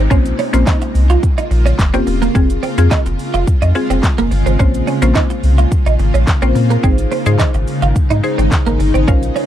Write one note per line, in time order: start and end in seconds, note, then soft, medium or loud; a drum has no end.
0.00 downlifter medium
0.10 0.33 A#1 loud
0.10 9.46 C#3 medium
0.10 0.40 A#3 medium
0.10 2.33 A#3 medium
0.10 0.40 C4 medium
0.10 0.40 C#4 medium
0.10 0.23 C#4 medium
0.10 0.40 F4 medium
0.10 2.33 F4 medium
0.10 0.40 C5 loud
0.10 kick loud
0.10 shaker medium
0.26 closed hi-hat medium
0.26 shaker medium
0.39 0.51 C#4 medium
0.39 open hi-hat medium
0.39 shaker medium
0.53 0.64 A#1 loud
0.53 1.31 A#3 medium
0.53 1.31 C4 medium
0.53 1.31 C#4 medium
0.53 1.31 F4 medium
0.53 1.31 C5 loud
0.53 muted clean electric guitar stroke soft
0.53 closed hi-hat medium
0.53 shaker medium
0.67 0.79 D#4 medium
0.67 kick loud
0.67 snare loud
0.67 clap loud
0.67 shaker medium
0.82 muted clean electric guitar stroke soft
0.82 closed hi-hat medium
0.82 shaker medium
0.95 1.17 C2 medium
0.95 open hi-hat medium
0.95 shaker medium
1.10 1.21 F4 medium
1.10 closed hi-hat medium
1.10 shaker medium
1.23 kick loud
1.23 shaker medium
1.38 1.49 D#4 medium
1.38 closed hi-hat medium
1.38 shaker medium
1.51 1.73 A#1 medium
1.51 muted clean electric guitar stroke soft
1.51 open hi-hat medium
1.51 shaker soft
1.66 1.77 C#4 medium
1.66 closed hi-hat medium
1.66 shaker medium
1.79 2.01 F1 medium
1.79 kick loud
1.79 snare loud
1.79 clap loud
1.79 shaker medium
1.94 2.23 A#3 medium
1.94 2.23 C4 medium
1.94 2.05 C4 medium
1.94 2.23 C#4 medium
1.94 2.23 F4 medium
1.94 2.23 G4 loud
1.94 closed hi-hat medium
1.94 shaker medium
2.07 2.29 D#1 medium
2.07 muted clean electric guitar stroke soft
2.07 open hi-hat medium
2.07 shaker medium
2.22 2.33 A#3 medium
2.22 closed hi-hat medium
2.22 shaker medium
2.35 2.57 F1 loud
2.35 4.57 G#3 medium
2.35 2.47 C4 loud
2.35 2.64 C4 loud
2.35 2.64 F4 medium
2.35 4.57 F4 medium
2.35 2.64 G#4 loud
2.35 kick loud
2.35 shaker medium
2.50 closed hi-hat medium
2.50 shaker medium
2.63 2.75 C4 medium
2.63 open hi-hat medium
2.63 shaker medium
2.78 2.88 F2 loud
2.78 3.45 C4 medium
2.78 3.45 F4 medium
2.78 3.45 G#4 loud
2.78 muted clean electric guitar stroke soft
2.78 closed hi-hat medium
2.78 shaker medium
2.91 3.03 D#4 medium
2.91 kick loud
2.91 snare loud
2.91 clap loud
2.91 shaker medium
3.06 3.16 F1 medium
3.06 muted clean electric guitar stroke soft
3.06 closed hi-hat medium
3.06 shaker medium
3.19 open hi-hat medium
3.19 shaker medium
3.34 3.44 F1 medium
3.34 3.45 F4 medium
3.34 closed hi-hat medium
3.34 shaker medium
3.47 3.53 F2 medium
3.47 kick loud
3.47 shaker medium
3.62 3.72 F2 loud
3.62 3.73 D#4 medium
3.62 closed hi-hat medium
3.62 shaker medium
3.75 4.33 C4 medium
3.75 4.34 F4 medium
3.75 4.34 G#4 loud
3.75 muted clean electric guitar stroke soft
3.75 open hi-hat medium
3.75 shaker soft
3.90 4.00 F1 medium
3.90 4.01 C4 medium
3.90 closed hi-hat medium
3.90 shaker medium
4.03 kick loud
4.03 snare loud
4.03 clap loud
4.03 shaker medium
4.18 4.29 F1 medium
4.18 4.29 A#3 medium
4.18 closed hi-hat medium
4.18 shaker medium
4.31 4.43 G1 medium
4.31 muted clean electric guitar stroke soft
4.31 open hi-hat medium
4.31 shaker medium
4.46 4.57 G#1 medium
4.46 4.57 C4 medium
4.46 closed hi-hat medium
4.46 shaker medium
4.59 4.82 A#1 loud
4.59 4.89 A#3 medium
4.59 6.81 A#3 medium
4.59 4.89 C4 medium
4.59 4.72 C#4 medium
4.59 4.89 C#4 medium
4.59 6.82 F4 medium
4.59 4.89 F4 medium
4.59 4.89 C5 loud
4.59 kick loud
4.59 shaker medium
4.74 closed hi-hat medium
4.74 shaker medium
4.87 5.00 C#4 medium
4.87 open hi-hat medium
4.87 shaker medium
5.02 5.13 A#1 loud
5.02 5.79 A#3 medium
5.02 5.79 C4 medium
5.02 5.79 C#4 medium
5.02 5.80 F4 medium
5.02 5.80 C5 loud
5.02 muted clean electric guitar stroke soft
5.02 closed hi-hat medium
5.02 shaker medium
5.15 5.28 D#4 medium
5.15 kick loud
5.15 snare loud
5.15 clap loud
5.15 shaker medium
5.30 muted clean electric guitar stroke soft
5.30 closed hi-hat medium
5.30 shaker medium
5.43 5.66 C2 loud
5.43 open hi-hat medium
5.43 shaker medium
5.58 5.69 F4 medium
5.58 closed hi-hat medium
5.58 shaker medium
5.71 kick loud
5.71 shaker medium
5.86 5.97 A#1 medium
5.86 5.97 D#4 medium
5.86 closed hi-hat medium
5.86 shaker medium
5.99 6.11 G#1 medium
5.99 muted clean electric guitar stroke soft
5.99 open hi-hat medium
5.99 shaker soft
6.14 6.25 A#1 loud
6.14 6.25 C#4 medium
6.14 closed hi-hat medium
6.14 shaker medium
6.27 6.33 A#1 soft
6.27 kick loud
6.27 snare loud
6.27 clap loud
6.27 shaker medium
6.42 6.53 A#1 loud
6.42 6.71 A#3 medium
6.42 6.53 C4 medium
6.42 6.71 C4 medium
6.42 6.71 C#4 medium
6.42 6.71 F4 medium
6.42 6.72 C5 medium
6.42 closed hi-hat medium
6.42 shaker medium
6.55 6.78 A#2 loud
6.55 muted clean electric guitar stroke soft
6.55 open hi-hat medium
6.55 shaker medium
6.70 6.81 A#3 medium
6.70 closed hi-hat medium
6.70 shaker medium
6.83 7.06 G#1 loud
6.83 9.06 G#3 medium
6.83 6.96 C4 medium
6.83 7.13 D#4 medium
6.83 9.06 D#4 medium
6.83 7.13 G#4 medium
6.83 7.13 C5 loud
6.83 kick loud
6.83 shaker medium
6.98 closed hi-hat medium
6.98 shaker medium
7.12 7.24 C4 medium
7.12 open hi-hat medium
7.12 shaker medium
7.26 7.37 G#2 loud
7.26 7.94 D#4 medium
7.26 7.94 G#4 medium
7.26 7.94 C5 loud
7.26 muted clean electric guitar stroke soft
7.26 closed hi-hat medium
7.26 shaker medium
7.39 7.52 D#4 medium
7.39 kick loud
7.39 snare loud
7.39 clap loud
7.39 shaker medium
7.54 7.65 G#1 loud
7.54 muted clean electric guitar stroke soft
7.54 closed hi-hat medium
7.54 shaker medium
7.67 open hi-hat medium
7.67 shaker medium
7.82 7.93 G#1 medium
7.82 7.93 F4 medium
7.82 closed hi-hat medium
7.82 shaker medium
7.96 8.02 G#2 soft
7.96 kick loud
7.96 shaker medium
8.10 8.21 G#2 loud
8.10 8.21 D#4 medium
8.10 closed hi-hat medium
8.10 shaker medium
8.23 8.82 D#4 medium
8.23 8.82 G#4 medium
8.23 8.82 C5 medium
8.23 muted clean electric guitar stroke soft
8.23 open hi-hat medium
8.23 shaker soft
8.38 8.49 G#1 loud
8.38 8.49 C4 medium
8.38 closed hi-hat medium
8.38 shaker medium
8.52 kick loud
8.52 snare loud
8.52 clap loud
8.52 shaker medium
8.67 8.77 G#1 medium
8.67 8.78 A#3 medium
8.67 closed hi-hat medium
8.67 shaker medium
8.80 8.92 G1 medium
8.80 muted clean electric guitar stroke soft
8.80 open hi-hat medium
8.80 shaker medium
8.94 9.05 G#1 medium
8.94 9.05 C4 medium
8.94 closed hi-hat medium
8.94 shaker medium
9.08 9.30 A#1 loud
9.08 9.46 A#3 medium
9.08 9.37 C#4 medium
9.08 9.20 C#4 medium
9.08 9.46 C#4 medium
9.08 9.37 F4 medium
9.08 9.37 A#4 medium
9.08 9.37 C5 medium
9.08 9.37 F5 loud
9.08 kick loud
9.08 shaker medium
9.23 closed hi-hat medium
9.23 shaker medium
9.36 9.46 C#4 medium
9.36 open hi-hat medium
9.36 shaker medium